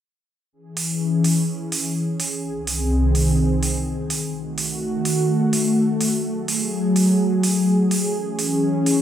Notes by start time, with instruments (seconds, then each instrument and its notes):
0.53 analog synth pad E3 C#4 G#4
0.77 open hi-hat
1.24 open hi-hat
1.72 open hi-hat
2.20 open hi-hat
2.43 analog synth pad C2 D#3 C4
2.67 open hi-hat
3.15 open hi-hat
3.63 open hi-hat
4.10 open hi-hat
4.34 analog synth pad D#3 A3 F#4
4.58 open hi-hat
5.05 open hi-hat
5.53 open hi-hat
6.01 open hi-hat
6.24 analog synth pad F#3 G#4
6.48 open hi-hat
6.96 open hi-hat
7.43 open hi-hat
7.91 open hi-hat
8.15 analog synth pad E3 C#4
8.39 open hi-hat
8.86 open hi-hat